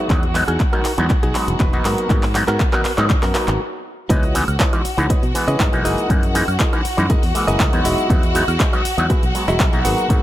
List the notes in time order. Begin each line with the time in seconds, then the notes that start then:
Already playing: D#4 F#4 G#4 F#5
0.10 E2 F#3 G#3 B3 D#4, kick, clap, closed hi-hat
0.23 closed hi-hat
0.35 F#3 G#3 B3 D#4, muted clean electric guitar stroke, clap, open hi-hat
0.48 E2 D#4 F#4 G#4, closed hi-hat, high woodblock
0.60 kick, clap, closed hi-hat
0.73 F#3 G#3 B3 D#4 F#4 A#4, closed hi-hat, high woodblock
0.85 muted fingered electric bass stroke, clap, open hi-hat
0.98 E2 F#3 G#3 B3 D#4, closed hi-hat
1.10 muted clean electric guitar stroke, muted fingered electric bass stroke, kick, clap, closed hi-hat
1.23 B1 D#4 F#4 G#4, closed hi-hat
1.35 F#3 G#3 B3 D#4, clap, open hi-hat
1.48 E1, muted clean electric guitar stroke, closed hi-hat
1.60 E1 D#4 F#4 B4, kick, clap, closed hi-hat
1.73 F#3 A#3 B3 D#4, closed hi-hat
1.85 G#2 B3 F#4 A#4, clap, open hi-hat
1.98 closed hi-hat
2.10 G#2 F#3 A#3 B3 D#4, kick, clap, closed hi-hat
2.23 clap, open hi-hat
2.35 F#3 A#3 B3 D#4, muted clean electric guitar stroke, clap, open hi-hat
2.48 G#2 B3 F#4 A#4, clap, closed hi-hat, high woodblock
2.60 kick, clap, closed hi-hat
2.73 F#3 A#3 B3 D#4 F#4 A#4, clap, closed hi-hat, high woodblock
2.85 muted fingered electric bass stroke, clap, open hi-hat
2.97 G#2 F#3 A#3 B3 D#4, clap, closed hi-hat
3.10 muted clean electric guitar stroke, kick, clap, closed hi-hat
3.23 F#2 B3 F#4 A#4, clap, open hi-hat
3.34 F#3 A#3 B3 D#4, clap, open hi-hat
3.48 G#1, muted clean electric guitar stroke, clap, closed hi-hat
4.09 C#2 E3 G#3 B3 D#4 E4 F#4 B4 C#5 D#5 F#5, kick, closed hi-hat, cabasa
4.23 closed hi-hat, cabasa
4.35 E3 G#3 B3 D#4, open hi-hat, cabasa
4.48 C#2, closed hi-hat, cabasa, high woodblock
4.60 E4 B4 C#5 D#5, kick, clap, closed hi-hat, cabasa
4.73 E3 G#3 B3 D#4, closed hi-hat, cabasa, high woodblock
4.85 muted fingered electric bass stroke, muted clean electric guitar stroke, open hi-hat, cabasa
4.98 C#2 E3 G#3 B3 D#4, closed hi-hat, cabasa
5.10 E4 B4 C#5 D#5, muted fingered electric bass stroke, kick, closed hi-hat, cabasa
5.23 B2, closed hi-hat, cabasa
5.35 E3 G#3 B3 D#5, muted clean electric guitar stroke, open hi-hat, cabasa
5.48 C#3 E4 B4 C#5 D#5, closed hi-hat, cabasa
5.60 G#2, kick, clap, closed hi-hat, cabasa
5.72 B1 E3 G#3 A#3 D#4, closed hi-hat, cabasa
5.85 F#1 E4 G#4 A#4 D#5, open hi-hat, cabasa
5.98 closed hi-hat, cabasa
6.10 F#2 E3 G#3 A#3 D#4, kick, closed hi-hat, cabasa
6.23 closed hi-hat, cabasa
6.35 E3 G#3 A#3 D#4, open hi-hat, cabasa
6.48 F#2, closed hi-hat, cabasa, high woodblock
6.59 E4 G#4 A#4 D#5, kick, clap, closed hi-hat, cabasa
6.72 E3 G#3 A#3 D#4, closed hi-hat, cabasa, high woodblock
6.85 muted clean electric guitar stroke, muted fingered electric bass stroke, open hi-hat, cabasa
6.97 F#2 E3 G#3 A#3 D#4, closed hi-hat, cabasa
7.10 E4 G#4 A#4 D#5, kick, closed hi-hat, cabasa
7.23 E2, open hi-hat, cabasa
7.35 E3 G#3 A#3 D#5, muted clean electric guitar stroke, open hi-hat, cabasa
7.48 F#1 E4 G#4 A#4 D#5, closed hi-hat, cabasa
7.60 C#2, kick, clap, closed hi-hat, cabasa
7.72 E2 F#3 G#3 B3 D#4, closed hi-hat, cabasa
7.84 E1 E4 F#4 G#4 D#5, open hi-hat, cabasa
7.98 closed hi-hat, cabasa
8.10 E2 F#3 G#3 B3 D#4, kick, closed hi-hat, cabasa
8.23 closed hi-hat, cabasa
8.35 F#3 G#3 B3 D#4, open hi-hat, cabasa
8.48 E2, closed hi-hat, cabasa, high woodblock
8.60 E4 F#4 G#4 D#5, kick, clap, closed hi-hat, cabasa
8.73 F#3 G#3 B3 D#4, closed hi-hat, cabasa, high woodblock
8.85 muted fingered electric bass stroke, muted clean electric guitar stroke, open hi-hat, cabasa
8.98 E2 F#3 G#3 B3 D#4, closed hi-hat, cabasa
9.10 E4 F#4 G#4 B4, muted fingered electric bass stroke, kick, closed hi-hat, cabasa
9.23 B1, closed hi-hat, cabasa
9.35 F#3 G#3 B3, muted clean electric guitar stroke, open hi-hat, cabasa
9.48 E1 E4 F#4 G#4 D#5, closed hi-hat, cabasa
9.60 B1, kick, clap, closed hi-hat, cabasa
9.73 B1 F#3 A#3 B3 D#4, closed hi-hat, cabasa
9.85 G#1 G#4 A#4 B4 F#5, open hi-hat, cabasa
9.98 closed hi-hat, cabasa
10.09 G#2 F#3 A#3 B3 D#4, kick, closed hi-hat, cabasa